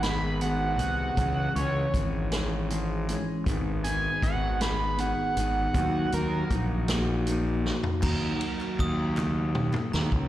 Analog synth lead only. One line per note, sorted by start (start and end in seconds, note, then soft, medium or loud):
0.03 0.40 B5 loud
0.41 1.52 F#5 medium
1.56 1.93 C#5 loud
3.84 4.21 G#5 loud
4.23 4.60 F#5 loud
4.62 4.98 B5 medium
5.00 6.10 F#5 loud
6.14 6.51 A#4 loud